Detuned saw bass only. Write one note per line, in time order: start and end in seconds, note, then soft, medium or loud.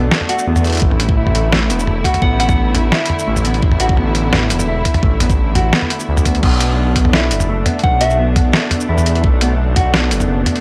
0.00 0.11 B1 loud
0.47 0.81 E2 loud
0.82 1.71 A1 loud
1.69 2.03 E1 loud
2.22 2.91 A1 loud
3.27 3.61 A1 medium
3.63 4.52 A1 loud
4.50 4.84 E1 loud
5.03 5.72 A1 loud
6.08 6.42 D2 medium
6.43 7.33 B1 loud
7.31 7.65 F#1 loud
7.84 8.53 B1 loud
8.89 9.23 E2 loud
9.24 10.13 B1 loud
10.12 10.46 F#1 loud